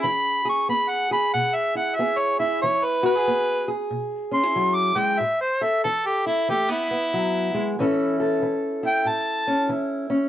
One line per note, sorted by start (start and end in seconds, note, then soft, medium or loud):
0.00 0.64 E3 medium
0.00 0.45 G#4 medium
0.00 0.46 B5 medium
0.45 1.11 G#4 medium
0.49 0.69 C#6 medium
0.69 1.29 B3 medium
0.69 0.90 B5 medium
0.89 1.10 F#5 medium
1.11 1.98 G#4 medium
1.11 1.33 B5 medium
1.33 1.93 B2 medium
1.33 1.56 F#5 medium
1.55 1.76 E5 medium
1.75 2.39 E4 medium
1.75 1.97 F#5 medium
1.95 2.58 B3 medium
1.95 2.20 E5 medium
2.00 2.60 G#4 medium
2.18 2.39 C#5 medium
2.40 3.06 E4 medium
2.40 2.61 E5 medium
2.62 3.23 E3 medium
2.62 2.86 C#5 medium
2.84 3.05 B4 medium
3.03 3.16 F#4 medium
3.03 3.68 B4 loud
3.16 3.67 G#4 medium
3.28 3.87 B3 medium
3.68 5.17 G#4 medium
3.91 4.51 B2 medium
4.32 4.44 C#4 medium
4.32 4.77 C6 medium
4.44 5.20 E4 soft
4.56 4.95 F#3 medium
4.75 5.00 D6 medium
4.96 5.20 G#3 medium
4.96 5.21 G5 medium
5.19 5.80 A2 medium
5.19 5.40 E5 medium
5.41 5.64 C5 medium
5.61 6.46 A4 medium
5.61 5.83 E5 medium
5.84 6.44 E3 medium
5.84 6.08 A4 medium
6.06 6.26 G4 medium
6.26 6.47 E4 medium
6.26 6.48 E4 medium
6.49 7.08 E3 medium
6.49 6.68 A3 medium
6.49 6.70 G4 medium
6.68 6.89 B3 soft
6.68 7.74 E4 medium
6.91 7.75 B3 medium
7.14 7.54 F#3 medium
7.54 7.78 G#3 medium
7.79 8.37 A2 medium
7.79 8.42 E3 medium
7.79 9.47 C#4 medium
7.79 8.83 E4 medium
7.79 8.20 A4 medium
8.20 10.29 A4 medium
8.42 9.01 E3 medium
8.83 9.70 E4 medium
8.83 9.10 G5 medium
9.05 9.64 A2 medium
9.05 9.69 A5 medium
9.47 10.09 C#4 medium
9.69 10.29 E3 medium
9.69 10.29 E4 soft
10.10 10.29 C#4 medium